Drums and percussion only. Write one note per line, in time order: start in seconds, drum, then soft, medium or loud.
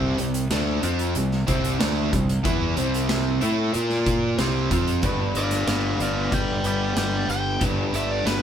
0.18 closed hi-hat medium
0.34 closed hi-hat medium
0.51 snare loud
0.51 closed hi-hat medium
0.83 closed hi-hat medium
0.99 closed hi-hat medium
1.15 closed hi-hat medium
1.31 snare soft
1.48 kick medium
1.48 closed hi-hat medium
1.65 closed hi-hat medium
1.80 snare loud
1.80 closed hi-hat medium
2.13 kick medium
2.13 closed hi-hat medium
2.29 closed hi-hat medium
2.45 kick loud
2.45 closed hi-hat medium
2.77 closed hi-hat medium
2.94 closed hi-hat medium
3.09 snare loud
3.09 closed hi-hat medium
3.42 closed hi-hat medium
3.74 closed hi-hat medium
3.90 snare soft
4.06 kick medium
4.06 closed hi-hat medium
4.39 snare loud
4.39 closed hi-hat medium
4.71 kick medium
4.71 closed hi-hat medium
4.87 closed hi-hat medium
5.03 kick loud
5.03 closed hi-hat medium
5.35 closed hi-hat medium
5.51 snare soft
5.51 closed hi-hat medium
5.67 snare loud
5.67 closed hi-hat medium
6.00 closed hi-hat medium
6.32 kick loud
6.32 closed hi-hat medium
6.64 closed hi-hat medium
6.97 snare loud
6.97 closed hi-hat medium
7.30 closed hi-hat medium
7.61 kick loud
7.61 closed hi-hat medium
7.94 closed hi-hat medium
8.27 snare loud
8.27 closed hi-hat medium